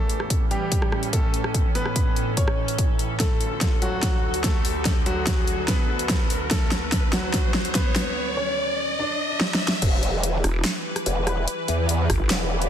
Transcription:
Already playing: ambient pad A2 E3 C#4 A4, grand piano A3 A4, riser
0.10 closed hi-hat
0.20 cross-stick
0.30 kick, closed hi-hat
0.51 grand piano G3 G4, closed hi-hat
0.72 kick, closed hi-hat
0.82 cross-stick
0.92 cross-stick
1.03 closed hi-hat
1.13 grand piano A3 A4, kick, closed hi-hat
1.34 closed hi-hat
1.44 cross-stick
1.54 kick, closed hi-hat
1.75 grand piano B3 B4, closed hi-hat
1.86 cross-stick
1.96 kick, closed hi-hat
2.16 closed hi-hat
2.37 grand piano C#4 C#5, kick, closed hi-hat
2.48 cross-stick
2.68 closed hi-hat
2.79 kick, closed hi-hat
2.99 closed hi-hat
3.20 ambient pad D2 D3 F#4, grand piano A3 A4, kick, snare, closed hi-hat
3.41 closed hi-hat
3.61 kick, snare, closed hi-hat
3.82 grand piano F#3 F#4, closed hi-hat
4.03 kick, snare, closed hi-hat
4.34 closed hi-hat
4.44 grand piano A3 A4, kick, snare, closed hi-hat
4.65 open hi-hat
4.85 kick, snare, closed hi-hat
5.06 grand piano F#3 F#4, closed hi-hat
5.27 kick, snare, closed hi-hat
5.47 closed hi-hat
5.68 grand piano B3 B4, kick, snare, closed hi-hat
5.99 closed hi-hat
6.10 kick, snare, closed hi-hat
6.30 open hi-hat
6.51 grand piano A3 A4, kick, snare, closed hi-hat
6.72 snare, closed hi-hat
6.92 kick, snare, closed hi-hat
7.13 grand piano F#3 F#4, snare, closed hi-hat
7.34 kick, snare, closed hi-hat
7.54 snare
7.65 closed hi-hat
7.75 grand piano B3 B4, kick, snare, closed hi-hat
7.96 snare, open hi-hat
8.37 grand piano C#4 C#5
8.99 grand piano D4 D5
9.41 snare
9.55 snare
9.68 snare
9.82 wobble bass E1, ambient pad E3 E4 G4 B4, kick, closed hi-hat, crash
10.03 closed hi-hat
10.23 closed hi-hat
10.44 wobble bass E1, cross-stick, open hi-hat
10.65 snare, clap, closed hi-hat
10.96 cross-stick, closed hi-hat
11.06 wobble bass E1, closed hi-hat
11.27 brass ensemble G3 E4 B4, cross-stick, closed hi-hat
11.48 closed hi-hat
11.68 wobble bass E2, closed hi-hat
11.89 closed hi-hat
12.10 wobble bass G1, kick, cross-stick, open hi-hat
12.30 wobble bass E1, snare, clap, closed hi-hat
12.62 closed hi-hat

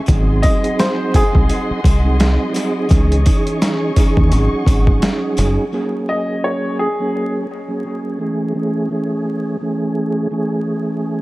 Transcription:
0.06 fingered electric bass G#1, tonewheel organ F#3 C4 D#4 G#4, string section G#4 D#5 F#5 C6, kick, closed hi-hat, sleigh bells
0.42 upright piano D#5, kick, closed hi-hat, sleigh bells
0.64 closed hi-hat
0.79 upright piano C5, snare, closed hi-hat, sleigh bells
1.14 upright piano G#4, kick, closed hi-hat, sleigh bells
1.31 fingered electric bass C2, tonewheel organ F#3 C4 D#4 G#4, kick
1.49 closed hi-hat, sleigh bells
1.70 muted fingered electric bass stroke
1.84 fingered electric bass C2, kick, closed hi-hat, sleigh bells
2.03 tonewheel organ F#3 C4 D#4 G#4
2.19 tonewheel organ F#3 C4 D#4 G#4, snare, closed hi-hat, sleigh bells
2.53 tonewheel organ F#3 C4 D#4 G#4, closed hi-hat, sleigh bells
2.88 fingered electric bass C#2, tonewheel organ E3 C#4 D#4 G#4, string section C#5 C#6, kick, closed hi-hat, sleigh bells
3.12 closed hi-hat
3.25 tonewheel organ E3 C#4 D#4 G#4, kick, closed hi-hat, sleigh bells
3.47 closed hi-hat
3.61 snare, closed hi-hat, sleigh bells
3.96 tonewheel organ E3 C#4 D#4 G#4, kick, closed hi-hat, sleigh bells
4.17 fingered electric bass D#2, kick
4.32 fingered electric bass G#1, tonewheel organ F#3 C#4 D#4, string section F#5, closed hi-hat, sleigh bells
4.36 tonewheel organ G#4
4.53 muted fingered electric bass stroke
4.64 fingered electric bass G#1, tonewheel organ F#3 C#4 D#4 G#4, kick, closed hi-hat, sleigh bells
4.87 kick
5.02 snare, closed hi-hat, sleigh bells
5.37 fingered electric bass F#1, closed hi-hat, sleigh bells
5.72 tonewheel organ F#3 A#3 C#4 G#4
6.09 upright piano D#5
6.44 upright piano C#5
6.79 upright piano G#4
6.99 tonewheel organ F#3 A#3 C#4 G#4
7.68 tonewheel organ F#3 A#3 C#4 G#4
7.84 tonewheel organ F#3 A#3 C#4 G#4
8.19 tonewheel organ E3 A3 C#4 G#4
8.55 tonewheel organ E3 A3 C#4 G#4
8.90 tonewheel organ E3 A3 C#4 G#4
9.60 tonewheel organ E3 A3 C#4 G#4
10.31 tonewheel organ E3 A3 C#4 G#4

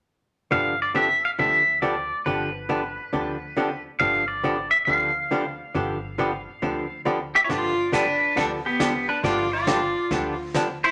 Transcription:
0.51 upright bass G1, hollow-body jazz guitar D3 F3 B3 D4 G4, pedal steel guitar F5
0.82 pedal steel guitar D5
0.94 hollow-body jazz guitar D3 F3 B3 D4 G4, pedal steel guitar E5
1.25 pedal steel guitar F5
1.39 upright bass D2, hollow-body jazz guitar D3 F3 B3 D4 G4, pedal steel guitar E5
1.82 hollow-body jazz guitar D3 F3 B3 D4 G4, pedal steel guitar D5
2.26 upright bass G1, hollow-body jazz guitar D3 F3 B3 D4 G4, pedal steel guitar B4
2.69 hollow-body jazz guitar D3 F3 B3 D4 G4
3.13 upright bass D2, hollow-body jazz guitar D3 F3 B3 D4 G4
3.57 hollow-body jazz guitar D3 F3 B3 D4 G4
4.00 upright bass G1, hollow-body jazz guitar D3 F3 B3 D4 G4, pedal steel guitar F5
4.28 pedal steel guitar D5
4.44 hollow-body jazz guitar D3 F3 B3 D4 G4
4.71 pedal steel guitar E5
4.85 upright bass D2, hollow-body jazz guitar D3 F3 B3 D4 G4, pedal steel guitar F5
5.31 hollow-body jazz guitar D3 F3 B3 D4 G4
5.75 upright bass G1, hollow-body jazz guitar D3 F3 B3 D4 G4
6.18 hollow-body jazz guitar D3 F3 B3 D4 G4
6.62 upright bass D2, hollow-body jazz guitar D3 F3 B3 D4 G4
7.05 hollow-body jazz guitar D3 F3 B3 D4 G4
7.35 pedal steel guitar G4 E5, fiddle G4
7.44 fiddle E4, pedal steel guitar C#5
7.49 upright bass G1, hollow-body jazz guitar D3 F3 B3 D4 G4, fiddle F4, pedal steel guitar F4 D5, brush sweep, kick, snare
7.92 hollow-body jazz guitar D3 F3 B3 D4 G4, fiddle D4, pedal steel guitar D4 B4, kick, snare, hi-hat pedal
8.36 upright bass D2, hollow-body jazz guitar D3 F3 B3 D4 G4, fiddle D4, pedal steel guitar D4 A4, brush sweep, kick, snare
8.65 fiddle B3, pedal steel guitar B3 G4
8.80 hollow-body jazz guitar D3 F3 B3 D4 G4, kick, snare, hi-hat pedal
9.09 fiddle D4, pedal steel guitar D4 B4
9.23 upright bass G1, hollow-body jazz guitar D3 F3 B3 D4 G4, fiddle F4, pedal steel guitar F4 D5, brush sweep, kick, snare
9.52 fiddle F4, pedal steel guitar F4 D5
9.67 hollow-body jazz guitar D3 F3 B3 D4 G4, kick, snare, hi-hat pedal
10.11 upright bass D2, hollow-body jazz guitar D3 F3 B3 D4 G4, brush sweep, kick, snare
10.54 hollow-body jazz guitar D3 F3 B3 D4 G4, kick, snare, hi-hat pedal
10.84 fiddle E4, pedal steel guitar E4 C5

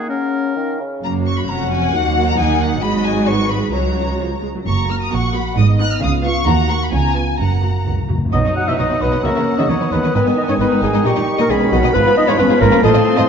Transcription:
Already playing: bassoon D#3, clarinet A#3
0.08 bassoon C#3, french horn section C#4, clarinet C#4, oboe A#4, flute F#5
0.56 bassoon D#3, clarinet C#4, flute F5
0.80 bassoon C#3
1.02 double bass section F#1, cello section F#2, french horn section F#3 C#4, viola section A#3 F#4, violin section A#5
1.26 violin section C#6
1.38 violin section B5
1.48 double bass section F1, cello section F2, french horn section F#3 C#4, viola section C#4, violin section F#5 A#5
1.72 violin section G#5
1.93 double bass section D#2, cello section D#2, french horn section F#3 D#4, viola section A#3 F#4, violin section F#5
2.28 violin section A#5
2.38 double bass section D#2, cello section D#3, viola section A#3 D#4, violin section G#5
2.61 violin section F#5
2.82 double bass section G#1, cello section G#2, french horn section F#3 D#4, viola section G#3 F#4, violin section D#5 B5
3.05 violin section G#5
3.28 violin section B4 C#6
3.50 violin section B5
3.73 double bass section C#2, cello section C#2, french horn section F#3 F#4, viola section F#3 F#4, violin section C#5 A#5
4.19 viola section F3, french horn section G#3 F4
4.43 viola section G#3
4.55 viola section F#3
4.66 double bass section F#1, cello section F#2, french horn section A#3 F#4, violin section A#5 C#6
4.89 viola section A#3 F#4, violin section F6
5.01 violin section D#6
5.12 double bass section A#1, cello section A#2, violin section F#5 C#6
5.35 viola section A#3 F#4, violin section B5
5.57 double bass section G#1, cello section G#2, french horn section B3 D#4, violin section D#5 D#6
5.79 viola section B3 D#4, violin section F#6
5.92 violin section F6
6.02 double bass section C#2, cello section C#3, french horn section F4, violin section F5 D#6
6.25 viola section B3 F4, violin section C#6
6.46 double bass section D#2, cello section D#3, french horn section A#3 F#4, violin section F#5 A#5
6.70 viola section A#3 F#4, violin section C#6
6.83 violin section B5
6.92 double bass section C#2, cello section C#3, french horn section B3 F4, violin section G#5 A#5
7.16 viola section B3 F4, violin section G#5
7.39 double bass section F#1, cello section F#2, timpani F#2, french horn section A#3 F#4, violin section F#5 A#5
7.47 timpani F#2
7.55 timpani F#2
7.62 timpani F#2, viola section A#3 F#4
7.70 timpani F#2
7.78 timpani F#2
7.86 double bass section C#2, cello section C#2, timpani F#2
7.94 timpani F#2
8.02 timpani F#2
8.10 timpani F#2, viola section A#3 F#4
8.18 timpani F#2
8.25 timpani F#2
8.33 double bass section B1, cello section B2, bassoon F#3, french horn section D#4, viola section D#4, violin section F#4 D#5 F#5, clarinet D#5, flute D#6, oboe D#6
8.45 cello section B2, violin section F#4 D#5
8.56 french horn section F#4, clarinet F#5, flute F#6
8.66 cello section B2, french horn section E4, violin section F#4 D#5, clarinet E5, flute E6
8.78 double bass section B1, cello section B2, french horn section D#4, violin section F#4 D#5, clarinet D#5, flute D#6
8.90 cello section B2, violin section F#4 B4
9.01 double bass section B1, cello section B2, french horn section B3, violin section F#4 D#5, clarinet B4, flute B5
9.12 cello section B2, violin section F#4 D#5
9.24 double bass section C#2, cello section C#3, french horn section A#3, viola section C#4, violin section F#4 E5, clarinet A#4, flute A#5, oboe E6
9.35 cello section C#3, violin section F#4 E5
9.58 cello section C#3, french horn section D#4, violin section F#4 E5, clarinet D#5, flute D#6
9.69 double bass section D#2, cello section D#3, viola section B3, french horn section C#4, violin section D#4 D#5, clarinet C#5, flute C#6, oboe D#6
9.80 cello section D#3, violin section D#4 B4
9.91 double bass section D#2, cello section D#3, french horn section B3, violin section D#4 D#5, clarinet B4, flute B5
10.03 cello section D#3, violin section D#4 D#5
10.14 double bass section G#1, cello section G#2, bassoon D#3, french horn section B3, viola section B3, violin section D#4 D#5 G#5, clarinet B4, flute B5
10.26 cello section G#2, violin section D#4 D#5
10.37 french horn section D#4, clarinet D#5, flute D#6
10.48 cello section G#2, french horn section C#4, violin section D#4 D#5, clarinet C#5, flute C#6
10.59 double bass section G#1, cello section G#2, french horn section B3, violin section D#4 D#5, viola section D#4, clarinet B4, flute B5
10.72 cello section G#2, violin section D#4 B4
10.82 double bass section G#1, cello section G#2, french horn section G#3, violin section D#4 D#5, clarinet G#4, flute G#5
10.93 cello section G#2, violin section D#4 D#5
11.04 double bass section A#1, cello section A#2, french horn section G3, violin section D#4 D#5 C#6, clarinet G4, flute G5, oboe C#6
11.16 cello section A#2, violin section D#4 D#5
11.38 cello section A#2, french horn section A#3, violin section D#4 D#5, clarinet A#4, flute A#5
11.49 double bass section B1, cello section B2, french horn section G#3, viola section C#4, violin section D#4 D#5 B5, clarinet G#4, flute G#5, oboe B5
11.60 cello section B2, violin section D#4 B4
11.72 double bass section B1, cello section B2, french horn section F#3, violin section D#4 D#5, clarinet F#4, flute F#5
11.83 cello section B2, violin section D#4 D#5
11.94 double bass section G#1, cello section G#2, bassoon F3, viola section B3, french horn section B3, violin section F4 B4, clarinet B4, flute B5
12.06 cello section G#2, violin section F4 B4
12.17 french horn section D#4, clarinet D#5, flute D#6
12.28 cello section G#2, french horn section C#4, violin section F4 B4, clarinet C#5, flute C#6
12.38 double bass section G#1, cello section G#2, french horn section B3, viola section C#4, violin section F4 B4, clarinet B4, flute B5
12.50 cello section G#2, violin section F4 G#4
12.61 double bass section G#1, cello section G#2, french horn section A#3, violin section F4 B4, clarinet A#4, flute A#5
12.72 cello section G#2, violin section F4 B4
12.83 double bass section A1, cello section A2, french horn section A3, viola section C4, violin section F4 D#5 C6, clarinet A4, flute A5, oboe D#6
12.95 cello section A2, violin section F4 D#5
13.16 cello section A2, french horn section C4, violin section F4 D#5, clarinet C5, flute C6

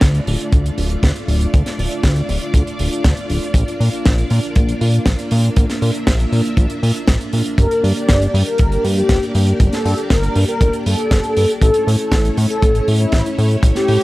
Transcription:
Already playing: string machine A3 D4 F4 D5
0.01 analog synth bass D2, kick, snare, closed hi-hat
0.15 closed hi-hat
0.27 analog synth bass D1, open hi-hat
0.41 closed hi-hat
0.52 analog synth bass D2, kick, closed hi-hat
0.66 closed hi-hat
0.78 analog synth bass D1, open hi-hat
0.90 closed hi-hat
1.03 analog synth bass D2, kick, snare, closed hi-hat
1.16 closed hi-hat
1.28 analog synth bass D1, open hi-hat
1.41 closed hi-hat
1.54 analog synth bass D2, kick, closed hi-hat
1.66 snare, closed hi-hat
1.79 analog synth bass D1, open hi-hat
1.91 closed hi-hat
2.03 analog synth bass D2, kick, snare, closed hi-hat
2.16 closed hi-hat
2.29 analog synth bass D1, open hi-hat
2.41 closed hi-hat
2.54 analog synth bass D2, kick, closed hi-hat
2.67 closed hi-hat
2.79 analog synth bass D1, open hi-hat
2.93 closed hi-hat
3.04 analog synth bass D2, kick, snare, closed hi-hat
3.17 closed hi-hat
3.30 analog synth bass D1, open hi-hat
3.43 closed hi-hat
3.54 analog synth bass A#1, string machine A#3, kick, closed hi-hat
3.68 closed hi-hat
3.80 analog synth bass A#2, open hi-hat
3.93 closed hi-hat
4.05 analog synth bass A#1, kick, snare, closed hi-hat
4.18 closed hi-hat
4.30 analog synth bass A#2, open hi-hat
4.43 closed hi-hat
4.55 analog synth bass A#1, kick, closed hi-hat
4.69 closed hi-hat
4.81 analog synth bass A#2, open hi-hat
4.94 closed hi-hat
5.06 analog synth bass A#1, kick, snare, closed hi-hat
5.19 closed hi-hat
5.31 analog synth bass A#2, open hi-hat
5.45 closed hi-hat
5.56 analog synth bass A#1, string machine E5, kick, closed hi-hat
5.70 snare, closed hi-hat
5.82 analog synth bass A#2, open hi-hat
5.94 closed hi-hat
6.07 analog synth bass A#1, kick, snare, closed hi-hat
6.20 closed hi-hat
6.32 analog synth bass A#2, open hi-hat
6.45 closed hi-hat
6.57 analog synth bass A#1, kick, closed hi-hat
6.70 closed hi-hat
6.83 analog synth bass A#2, open hi-hat
6.96 closed hi-hat
7.08 analog synth bass A#1, kick, snare, closed hi-hat
7.21 closed hi-hat
7.33 analog synth bass A#2, open hi-hat
7.46 closed hi-hat
7.58 analog synth bass G1, string machine A#3 G4 D5, analog polysynth A#4, kick, closed hi-hat
7.71 closed hi-hat
7.83 analog synth bass G2, open hi-hat
7.96 analog polysynth D5, closed hi-hat
8.09 analog synth bass G1, kick, snare, closed hi-hat
8.22 closed hi-hat
8.34 analog synth bass G2, open hi-hat
8.46 analog polysynth A#4, closed hi-hat
8.58 analog synth bass G1, kick, closed hi-hat
8.72 closed hi-hat
8.84 analog synth bass G2, open hi-hat
8.97 analog polysynth G4, closed hi-hat
9.09 analog synth bass G1, kick, snare, closed hi-hat
9.23 closed hi-hat
9.35 analog synth bass G2, open hi-hat
9.47 closed hi-hat
9.60 analog synth bass G1, kick, closed hi-hat
9.73 analog polysynth A4, snare, closed hi-hat
9.85 analog synth bass G2, open hi-hat
9.98 closed hi-hat
10.10 analog synth bass G1, analog polysynth A#4, kick, snare, closed hi-hat
10.23 closed hi-hat
10.35 analog synth bass G2, open hi-hat
10.48 analog polysynth A#4, closed hi-hat
10.61 analog synth bass G1, kick, closed hi-hat
10.73 closed hi-hat
10.86 analog synth bass G2, analog polysynth A4, open hi-hat
10.98 closed hi-hat
11.11 analog synth bass G1, kick, snare, closed hi-hat
11.24 closed hi-hat
11.37 analog synth bass G2, open hi-hat
11.49 closed hi-hat
11.61 analog synth bass A1, string machine A3 C#4 E4 C#5, analog polysynth A4, kick, closed hi-hat
11.74 closed hi-hat
11.87 analog synth bass A2, open hi-hat
11.99 analog polysynth A4, closed hi-hat
12.12 analog synth bass A1, kick, snare, closed hi-hat
12.25 closed hi-hat
12.37 analog synth bass A2, open hi-hat
12.50 analog polysynth A4, closed hi-hat
12.62 analog synth bass A1, kick, closed hi-hat
12.75 closed hi-hat
12.88 analog synth bass A2, open hi-hat
13.00 analog polysynth E4, closed hi-hat
13.12 analog synth bass A1, kick, snare, closed hi-hat
13.26 closed hi-hat
13.38 analog synth bass A2, open hi-hat
13.51 closed hi-hat
13.63 analog synth bass A1, kick, closed hi-hat
13.75 analog polysynth G4, snare, closed hi-hat
13.88 analog synth bass A2, open hi-hat

